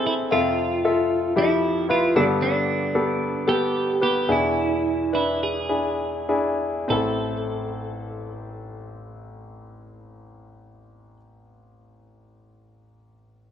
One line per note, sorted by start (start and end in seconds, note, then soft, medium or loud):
0.00 0.27 A2 medium
0.00 0.28 E3 medium
0.00 0.34 C4 medium
0.00 0.33 E4 medium
0.00 0.34 G#4 medium
0.00 0.32 A4 medium
0.00 0.33 B4 medium
0.07 0.13 E4 medium
0.31 2.12 F2 medium
0.31 2.12 C3 soft
0.31 0.76 F4 soft
0.31 1.33 F4 medium
0.31 0.76 A4 medium
0.31 0.76 E5 medium
0.85 1.29 F4 medium
0.85 1.29 A4 medium
0.85 1.29 E5 medium
1.36 1.81 F3 medium
1.36 1.81 E4 medium
1.36 1.86 E4 medium
1.36 1.81 G4 medium
1.89 2.15 E4 medium
1.89 2.15 F4 medium
1.89 2.16 F4 medium
1.89 2.16 B4 medium
2.15 4.25 G2 medium
2.15 4.25 D3 medium
2.15 2.82 B3 medium
2.15 2.23 D4 medium
2.15 2.83 G4 medium
2.15 2.83 A4 medium
2.42 3.51 D4 medium
2.95 3.40 B3 medium
2.95 3.40 G4 medium
2.95 3.40 A4 medium
3.47 3.93 B3 medium
3.47 3.93 G4 medium
3.47 4.02 G4 medium
3.47 3.93 A4 medium
4.01 4.29 B3 soft
4.01 4.29 G4 medium
4.01 4.30 G4 medium
4.01 4.29 B4 medium
4.28 6.55 E2 medium
4.28 6.55 B2 medium
4.28 4.99 D4 medium
4.28 5.00 E4 medium
4.28 5.14 E4 medium
4.28 5.00 G#4 medium
5.13 5.61 D4 medium
5.13 5.61 E4 soft
5.13 5.43 E4 medium
5.13 5.61 B4 medium
5.43 6.56 G#4 medium
5.69 6.19 D4 medium
5.69 6.20 E4 soft
5.69 6.20 G#4 medium
6.29 6.80 D4 medium
6.29 6.80 E4 medium
6.29 6.80 G#4 medium
6.88 11.16 A1 soft
6.88 11.14 C4 medium
6.88 11.16 E4 medium
6.88 11.17 A4 medium
6.92 11.18 A4 medium